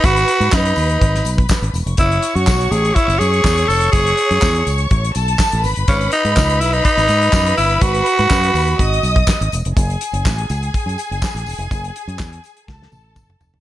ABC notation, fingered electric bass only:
X:1
M:4/4
L:1/16
Q:1/4=124
K:F#dor
V:1 name="Fingered electric bass" clef=bass
G,,,2 z G,, F,,2 D,,2 G,,,2 B,,,2 z G,,, E,,, ^E,,, | F,,,2 z F,, B,,,2 A,,,2 z F,,, F,,2 E,,2 ^E,,,2 | F,,,2 z F,, E,,2 C,,2 A,,,2 B,,,2 z A,,, G,,, =G,,, | G,,,2 z G,, C,,2 B,,,2 z G,,, G,,2 F,,2 =G,,,2 |
G,,,2 z G,, F,,2 D,,2 G,,,2 B,,,2 z G,,, E,,, ^E,,, | F,,,2 z F,,, A,,,2 C,,2 z F,, z F,,, z A,,, E,,, ^E,,, | F,,,2 z F,, E,,2 z2 C,,2 A,,,2 F,,,2 ^E,,,2 |]